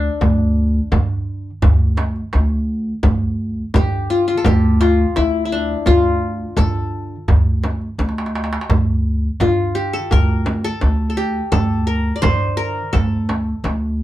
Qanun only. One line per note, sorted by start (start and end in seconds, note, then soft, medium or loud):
0.00 2.65 D4 medium
0.00 0.89 A4 medium
3.76 4.45 G4 medium
4.10 4.27 F4 medium
4.28 4.80 F4 medium
4.37 5.54 A4 medium
4.46 5.71 G4 medium
4.81 5.22 F4 medium
5.16 5.45 E4 medium
5.45 5.93 E4 medium
5.52 7.02 D4 medium
5.87 7.22 F4 medium
6.57 8.30 A4 medium
9.41 10.76 F4 medium
9.75 11.01 G4 medium
9.93 10.18 A4 medium
10.12 10.70 A#4 medium
10.64 11.09 A4 medium
11.10 11.51 A4 medium
11.17 12.43 G4 medium
11.52 11.93 A4 medium
11.87 12.57 A#4 medium
12.16 13.14 D5 medium
12.22 13.28 C5 loud
12.57 12.99 A#4 medium
12.93 14.03 A4 medium